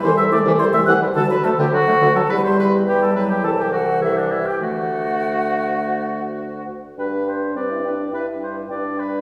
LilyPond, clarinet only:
\new Staff \with { instrumentName = "Clarinet" } { \clef bass \time 4/4 \key g \major \tempo 4 = 105 e16 g16 a16 e16 g16 a16 e16 g16 d16 fis16 a16 d16 fis16 a16 d16 fis16 | g4 g8 fis8 e4 e4 | a2.~ a8 r8 | b'8 b'8 b'8 b'8 b'8 b'8 b'8 b'8 | }